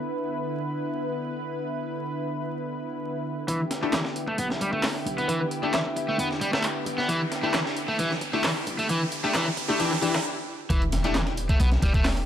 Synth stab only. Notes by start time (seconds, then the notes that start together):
3.82 D4 E4 G4
5.63 D4 E4 G4
7.43 D4 E4 G4
8.33 D4 E4 G4
9.23 D4 E4 G4
9.68 D4 E4 G4
9.79 D4 E4 G4
10.02 D4 E4 G4
11.04 D4 E4 G4